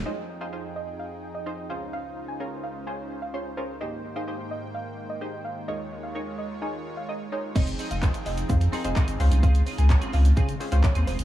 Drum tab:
CC |----------------|----------------|----------------|----------------|
HH |----------------|----------------|----------------|----------------|
SH |----------------|----------------|----------------|----------------|
CP |----------------|----------------|----------------|----------------|
BD |----------------|----------------|----------------|----------------|

CC |x---------------|----------------|
HH |-xox-xox-xox-xox|-xox-xox-xox-xox|
SH |xxxxxxxxxxxxxxxx|xxxxxxxxxxxxxxxx|
CP |----x-------x---|----x-------x---|
BD |o---o---o---o---|o---o---o---o---|